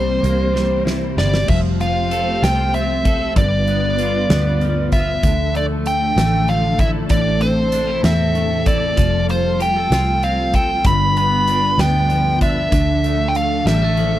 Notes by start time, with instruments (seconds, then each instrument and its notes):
Already playing: fingered electric bass C2, clean electric guitar C3 G3, string section E3 A#3 C4 G4 C5, lead electric guitar C5
0.23 fingered electric bass C2, clean electric guitar A#3, closed hi-hat
0.54 clean electric guitar G3, snare
0.85 clean electric guitar E4, snare
1.17 fingered electric bass G1, clean electric guitar G3, lead electric guitar D5, snare
1.34 snare
1.48 fingered electric bass F1, string section F3 A3 C4 G4 C5, clean electric guitar F3, lead electric guitar E5, kick, crash
1.80 clean electric guitar F4, lead electric guitar F5, closed hi-hat
2.11 clean electric guitar A4, closed hi-hat
2.42 fingered electric bass C2, clean electric guitar F4, lead electric guitar G5, snare, closed hi-hat
2.74 clean electric guitar C4, lead electric guitar E5, closed hi-hat
3.05 clean electric guitar A4, kick, closed hi-hat
3.36 fingered electric bass G1, clean electric guitar G2, string section D3 G3 B3 F4 B4, lead electric guitar D5, kick, closed hi-hat
3.67 clean electric guitar B3, closed hi-hat
3.98 clean electric guitar F4, closed hi-hat
4.30 fingered electric bass D2, clean electric guitar B3, snare, closed hi-hat
4.61 clean electric guitar F3, closed hi-hat
4.92 clean electric guitar F4, lead electric guitar E5, kick, closed hi-hat
5.23 fingered electric bass D2, clean electric guitar D3, string section D3 F3 A3 D4 A4, kick, closed hi-hat
5.54 clean electric guitar A3, lead electric guitar D5, closed hi-hat
5.86 lead electric guitar G5, closed hi-hat
6.16 fingered electric bass A1, clean electric guitar A3, snare, closed hi-hat
6.48 clean electric guitar F3, lead electric guitar F5, closed hi-hat
6.79 clean electric guitar E4, lead electric guitar E5, kick, closed hi-hat
7.09 fingered electric bass A1, clean electric guitar A2, string section C3 E3, lead electric guitar D5, kick, closed hi-hat
7.41 clean electric guitar C4, lead electric guitar C5, closed hi-hat
7.72 clean electric guitar D4, closed hi-hat
7.87 clean electric guitar E4
8.03 fingered electric bass E2, clean electric guitar C4, lead electric guitar E5, snare, closed hi-hat
8.35 clean electric guitar A3, closed hi-hat
8.66 clean electric guitar E4, lead electric guitar D5, kick, closed hi-hat
8.96 fingered electric bass F1, clean electric guitar F3, string section G3 F4, kick, closed hi-hat
9.28 clean electric guitar F4, lead electric guitar C5, closed hi-hat
9.60 clean electric guitar G4, lead electric guitar G5, closed hi-hat
9.76 clean electric guitar A4
9.90 fingered electric bass C2, clean electric guitar F4, snare, closed hi-hat
10.23 clean electric guitar C4, lead electric guitar F5, closed hi-hat
10.53 clean electric guitar A4, lead electric guitar G5, kick, closed hi-hat
10.84 fingered electric bass G1, clean electric guitar G2, string section D3 G3 B3 B4, lead electric guitar B5, kick, closed hi-hat
11.17 clean electric guitar B3, lead electric guitar B5, closed hi-hat
11.48 clean electric guitar D4, closed hi-hat
11.78 fingered electric bass D2, clean electric guitar B3, lead electric guitar G5, snare, closed hi-hat
12.09 clean electric guitar F3, closed hi-hat
12.41 clean electric guitar D4, lead electric guitar E5, kick, closed hi-hat
12.72 fingered electric bass D2, clean electric guitar D3, string section F3 A3 D4 A4, kick, closed hi-hat
13.04 clean electric guitar A3, closed hi-hat
13.28 lead electric guitar G5
13.35 lead electric guitar F5, closed hi-hat
13.65 fingered electric bass A1, clean electric guitar G3, lead electric guitar E5, snare, closed hi-hat
13.82 clean electric guitar A3
13.97 clean electric guitar F3, closed hi-hat